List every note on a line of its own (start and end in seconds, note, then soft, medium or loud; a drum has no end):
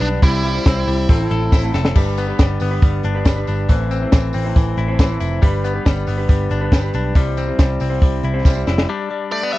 0.00 0.18 B1 medium
0.00 0.21 G3 medium
0.00 0.22 G3 medium
0.00 0.27 B3 medium
0.00 0.22 D4 medium
0.00 0.22 G4 medium
0.00 0.22 B4 medium
0.00 hi-hat pedal medium
0.00 open hi-hat medium
0.00 tambourine medium
0.22 0.58 C2 medium
0.22 0.55 C3 medium
0.22 0.55 E3 medium
0.22 0.55 G3 medium
0.22 0.44 G3 medium
0.22 0.55 C4 medium
0.22 0.55 E4 medium
0.22 1.14 E4 medium
0.22 0.54 C5 medium
0.22 kick loud
0.22 hi-hat pedal medium
0.22 open hi-hat medium
0.22 tambourine soft
0.44 0.86 G3 medium
0.44 hi-hat pedal medium
0.44 open hi-hat medium
0.44 tambourine soft
0.55 0.77 G3 soft
0.55 0.77 C4 soft
0.55 0.76 E4 medium
0.55 0.75 C5 medium
0.66 0.84 C2 loud
0.66 1.08 C4 medium
0.66 kick loud
0.66 snare loud
0.66 hi-hat pedal medium
0.66 open hi-hat medium
0.66 tambourine medium
0.76 1.09 G3 medium
0.76 1.09 C4 medium
0.76 1.09 E4 medium
0.76 1.09 C5 medium
0.87 1.05 C2 medium
0.87 1.13 G3 medium
0.87 hi-hat pedal medium
0.87 open hi-hat medium
0.87 tambourine medium
1.09 1.27 A1 medium
1.09 1.20 A2 medium
1.09 1.20 E3 loud
1.09 1.20 A3 medium
1.09 2.00 C4 medium
1.09 1.20 C4 medium
1.09 1.19 E4 loud
1.09 1.18 A4 medium
1.09 kick loud
1.09 hi-hat pedal medium
1.09 open hi-hat medium
1.20 1.63 A3 medium
1.20 1.63 C4 medium
1.20 1.62 E4 medium
1.20 1.62 A4 medium
1.30 1.49 A1 loud
1.30 1.73 A4 medium
1.30 hi-hat pedal medium
1.30 open hi-hat medium
1.52 1.70 A1 loud
1.52 2.00 E4 medium
1.52 kick loud
1.52 snare medium
1.52 tambourine medium
1.63 1.96 A2 medium
1.63 1.96 E3 medium
1.63 1.95 A3 medium
1.63 1.96 C4 medium
1.63 1.96 E4 medium
1.63 1.96 A4 medium
1.74 1.92 F1 loud
1.74 2.00 A4 medium
1.74 snare medium
1.74 tambourine medium
1.85 snare loud
1.95 2.31 G1 medium
1.95 2.28 G3 medium
1.95 2.38 G3 medium
1.95 2.29 D4 medium
1.95 2.27 G4 medium
1.95 2.26 B4 medium
1.95 kick loud
1.95 crash loud
1.95 tambourine soft
2.17 2.60 B3 medium
2.17 hi-hat pedal medium
2.17 open hi-hat medium
2.17 tambourine soft
2.28 2.72 D4 soft
2.28 2.70 G4 medium
2.28 2.70 B4 medium
2.39 2.57 G1 loud
2.39 2.82 G3 medium
2.39 kick loud
2.39 snare loud
2.39 hi-hat pedal medium
2.39 open hi-hat medium
2.39 tambourine loud
2.60 2.79 G1 medium
2.60 3.74 B3 medium
2.60 hi-hat pedal medium
2.60 open hi-hat medium
2.60 tambourine medium
2.71 3.16 D4 medium
2.71 3.15 G4 medium
2.71 3.13 B4 medium
2.82 3.00 G1 medium
2.82 3.25 G3 medium
2.82 kick loud
2.82 hi-hat pedal medium
2.82 open hi-hat medium
2.82 tambourine soft
3.03 3.22 G1 medium
3.03 3.47 D4 medium
3.03 hi-hat pedal medium
3.03 open hi-hat medium
3.15 3.37 D4 medium
3.15 3.36 G4 medium
3.15 3.35 B4 medium
3.25 3.44 G1 loud
3.25 3.69 G3 medium
3.25 kick loud
3.25 snare loud
3.25 hi-hat pedal medium
3.25 open hi-hat medium
3.25 tambourine loud
3.36 3.69 D4 soft
3.36 3.69 G4 medium
3.36 3.69 B4 medium
3.47 3.66 G1 medium
3.47 3.74 D4 medium
3.47 hi-hat pedal medium
3.47 open hi-hat medium
3.47 tambourine medium
3.69 4.05 A1 loud
3.69 4.01 A2 medium
3.69 4.02 E3 medium
3.69 4.12 E3 medium
3.69 4.02 A3 medium
3.69 4.02 C4 medium
3.69 4.01 E4 medium
3.69 4.00 C5 medium
3.69 kick loud
3.69 hi-hat pedal medium
3.69 open hi-hat medium
3.69 tambourine soft
3.91 4.33 C4 medium
3.91 hi-hat pedal medium
3.91 open hi-hat medium
3.91 tambourine soft
4.01 4.45 A3 soft
4.01 4.45 C4 medium
4.01 4.44 E4 medium
4.01 4.43 C5 medium
4.12 4.30 A1 loud
4.12 4.55 E3 medium
4.12 kick loud
4.12 snare loud
4.12 hi-hat pedal medium
4.12 open hi-hat medium
4.12 tambourine loud
4.33 4.52 A1 loud
4.33 5.47 C4 medium
4.33 hi-hat pedal medium
4.33 open hi-hat medium
4.33 tambourine medium
4.44 4.89 A3 medium
4.44 4.88 C4 medium
4.44 4.88 E4 medium
4.44 4.87 C5 medium
4.56 4.74 A1 loud
4.56 4.99 E3 medium
4.56 kick loud
4.56 hi-hat pedal medium
4.56 open hi-hat medium
4.56 tambourine soft
4.77 4.95 A1 medium
4.77 5.19 E4 medium
4.77 hi-hat pedal medium
4.77 open hi-hat medium
4.88 5.10 A3 soft
4.88 5.09 C4 medium
4.88 5.09 E4 medium
4.88 5.08 C5 medium
4.99 5.17 A1 medium
4.99 5.42 E3 medium
4.99 kick loud
4.99 snare loud
4.99 hi-hat pedal medium
4.99 open hi-hat medium
4.99 tambourine loud
5.09 5.42 A3 soft
5.09 5.42 C4 medium
5.09 5.42 E4 medium
5.09 5.42 C5 medium
5.20 5.39 F1 medium
5.20 5.47 E4 medium
5.20 hi-hat pedal medium
5.20 open hi-hat medium
5.20 tambourine medium
5.42 5.78 G1 loud
5.42 5.75 G3 medium
5.42 5.86 G3 loud
5.42 5.75 D4 medium
5.42 5.74 G4 medium
5.42 5.73 B4 loud
5.42 kick loud
5.42 hi-hat pedal medium
5.42 open hi-hat medium
5.42 tambourine soft
5.64 6.06 B3 medium
5.64 hi-hat pedal medium
5.64 open hi-hat medium
5.64 tambourine medium
5.74 6.18 D4 medium
5.74 6.18 G4 medium
5.74 6.16 B4 medium
5.86 6.04 G1 loud
5.86 6.29 G3 medium
5.86 kick loud
5.86 snare loud
5.86 hi-hat pedal medium
5.86 open hi-hat medium
5.86 tambourine medium
6.07 6.25 G1 medium
6.07 7.20 B3 medium
6.07 hi-hat pedal medium
6.07 open hi-hat medium
6.07 tambourine soft
6.18 6.62 D4 soft
6.18 6.61 G4 medium
6.18 6.60 B4 medium
6.29 6.47 G1 loud
6.29 6.73 G3 medium
6.29 kick loud
6.29 hi-hat pedal medium
6.29 open hi-hat medium
6.29 tambourine soft
6.50 6.69 G1 medium
6.50 6.94 D4 medium
6.50 hi-hat pedal medium
6.50 open hi-hat medium
6.50 tambourine soft
6.61 6.83 D4 medium
6.61 6.83 G4 medium
6.61 6.81 B4 medium
6.72 6.90 G1 loud
6.72 7.16 G3 medium
6.72 kick loud
6.72 snare loud
6.72 hi-hat pedal medium
6.72 open hi-hat medium
6.72 tambourine medium
6.82 7.15 D4 medium
6.82 7.16 G4 medium
6.82 7.15 B4 medium
6.93 7.12 B1 medium
6.93 7.20 D4 medium
6.93 hi-hat pedal medium
6.93 open hi-hat medium
6.93 tambourine soft
7.14 7.51 C2 loud
7.14 7.47 C3 medium
7.14 7.48 E3 medium
7.14 7.48 G3 medium
7.14 7.59 G3 medium
7.14 7.47 C4 medium
7.14 7.46 E4 medium
7.14 7.45 C5 medium
7.14 kick loud
7.14 hi-hat pedal medium
7.14 open hi-hat medium
7.14 tambourine soft
7.37 7.80 C4 medium
7.37 hi-hat pedal medium
7.37 open hi-hat medium
7.37 tambourine soft
7.47 7.91 G3 medium
7.47 7.90 C4 medium
7.47 7.89 E4 medium
7.47 7.89 C5 medium
7.59 7.77 C2 loud
7.59 8.02 G3 medium
7.59 kick loud
7.59 snare loud
7.59 hi-hat pedal medium
7.59 open hi-hat medium
7.59 tambourine loud
7.80 7.98 C2 medium
7.80 8.93 C4 medium
7.80 hi-hat pedal medium
7.80 open hi-hat medium
7.80 tambourine medium
7.90 8.35 G3 soft
7.90 8.34 C4 soft
7.90 8.33 E4 medium
7.90 8.32 C5 medium
8.01 8.20 C2 medium
8.01 8.45 G3 medium
8.01 kick loud
8.01 hi-hat pedal medium
8.01 open hi-hat medium
8.23 8.41 C2 medium
8.23 8.66 E4 medium
8.23 hi-hat pedal medium
8.23 open hi-hat medium
8.34 8.56 G3 medium
8.34 8.55 C4 soft
8.34 8.54 E4 medium
8.34 8.54 C5 medium
8.45 8.63 C2 medium
8.45 8.88 G3 medium
8.45 kick loud
8.45 snare medium
8.45 tambourine medium
8.55 8.89 G3 medium
8.55 8.89 C4 soft
8.55 8.88 E4 soft
8.55 8.88 C5 medium
8.67 8.85 F1 medium
8.67 8.89 E4 medium
8.67 snare medium
8.67 tambourine medium
8.78 snare loud
8.89 9.10 G3 medium
8.89 9.58 D4 medium
9.11 9.53 G3 medium
9.32 9.43 A3 medium
9.32 9.52 D5 loud
9.43 9.58 B3 medium
9.53 9.58 G3 medium
9.53 9.58 E5 medium